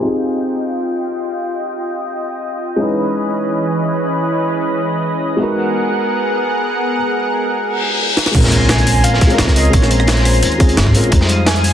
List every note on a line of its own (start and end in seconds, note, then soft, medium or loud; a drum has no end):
0.00 2.77 C4 medium
0.00 2.78 D#4 medium
0.00 2.77 F4 medium
0.00 2.79 F4 medium
0.00 2.76 G4 medium
0.00 5.36 D#5 medium
0.00 2.77 G5 medium
0.06 2.79 G#4 medium
2.76 5.37 E3 medium
2.76 5.35 G#3 medium
2.76 5.37 C#4 medium
2.76 5.38 D#4 medium
2.76 5.37 B4 medium
2.81 5.39 E4 medium
2.81 5.39 B4 medium
5.37 6.94 G#3 medium
5.37 6.95 B3 medium
5.37 8.32 B3 medium
5.37 6.96 D#4 medium
5.37 8.32 G#4 medium
5.37 8.32 A#4 medium
5.37 8.32 F#5 medium
5.42 6.97 F#4 medium
5.42 6.98 A#4 medium
7.65 reverse cymbal medium
8.17 snare medium
8.26 snare medium
8.31 9.29 A#1 loud
8.31 9.26 G#3 medium
8.31 9.27 C4 medium
8.31 9.28 C#4 medium
8.31 11.09 G#5 medium
8.31 11.09 A#5 medium
8.31 11.09 C6 medium
8.31 kick loud
8.31 closed hi-hat medium
8.31 crash loud
8.31 impact medium
8.36 9.29 F4 medium
8.36 9.30 A#4 medium
8.44 snare medium
8.52 closed hi-hat medium
8.69 9.05 G#5 loud
8.69 snare loud
8.69 closed hi-hat medium
8.78 closed hi-hat soft
8.87 closed hi-hat medium
8.87 open hi-hat medium
9.04 9.39 F5 loud
9.04 closed hi-hat medium
9.04 closed hi-hat loud
9.14 snare soft
9.21 kick loud
9.21 snare soft
9.21 closed hi-hat medium
9.27 9.69 G#3 loud
9.27 9.70 C4 medium
9.27 9.71 C#4 medium
9.27 closed hi-hat soft
9.32 9.72 F4 medium
9.32 9.73 A#4 loud
9.38 9.72 C#2 loud
9.38 snare loud
9.38 closed hi-hat loud
9.38 closed hi-hat medium
9.47 kick medium
9.47 snare medium
9.47 snare soft
9.56 9.75 D#5 loud
9.56 closed hi-hat medium
9.56 open hi-hat medium
9.65 closed hi-hat soft
9.70 10.41 A#1 loud
9.70 10.56 G#3 medium
9.70 10.57 C4 medium
9.70 10.58 C#4 medium
9.70 9.92 C#5 loud
9.70 kick loud
9.70 closed hi-hat medium
9.70 closed hi-hat loud
9.75 10.59 F4 medium
9.75 10.60 A#4 loud
9.82 snare soft
9.91 10.95 C5 medium
9.91 closed hi-hat medium
10.00 cross-stick medium
10.08 snare loud
10.08 closed hi-hat medium
10.17 snare soft
10.17 closed hi-hat soft
10.25 cross-stick medium
10.25 closed hi-hat medium
10.25 open hi-hat medium
10.33 closed hi-hat soft
10.43 10.79 D#2 medium
10.43 closed hi-hat loud
10.43 closed hi-hat medium
10.52 closed hi-hat soft
10.58 10.91 G#3 medium
10.58 10.92 C4 medium
10.58 10.93 C#4 medium
10.58 10.93 F4 medium
10.58 10.94 G#4 medium
10.58 kick loud
10.58 closed hi-hat medium
10.69 closed hi-hat soft
10.77 10.93 G#1 loud
10.77 snare loud
10.77 closed hi-hat medium
10.87 kick medium
10.93 11.10 A#1 medium
10.93 11.00 G#3 medium
10.93 11.01 C4 medium
10.93 11.01 C#4 medium
10.93 11.02 F4 medium
10.93 11.02 A#4 loud
10.93 closed hi-hat medium
10.93 open hi-hat medium
11.04 closed hi-hat soft
11.09 11.73 F2 loud
11.09 11.73 F3 medium
11.09 11.73 G#3 medium
11.09 11.73 D#4 medium
11.09 11.73 F4 medium
11.09 11.73 F5 medium
11.09 11.73 D#6 medium
11.09 kick loud
11.09 closed hi-hat medium
11.14 11.73 G3 medium
11.14 11.73 C5 medium
11.21 snare medium
11.29 closed hi-hat medium
11.46 11.73 G#5 loud
11.46 snare loud
11.46 closed hi-hat medium
11.56 closed hi-hat soft
11.64 closed hi-hat medium
11.64 open hi-hat medium